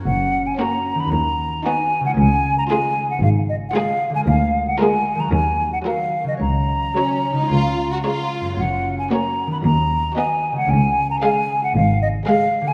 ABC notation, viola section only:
X:1
M:4/4
L:1/8
Q:1/4=114
K:F#
V:1 name="Viola section" clef=bass
z2 A,2 z2 B,2 | z2 G,2 z2 G,2 | z2 G,2 z2 F,2 | z2 F,2 z2 G,2 |
z2 A,2 z2 B,2 | z2 G,2 z2 G,2 |]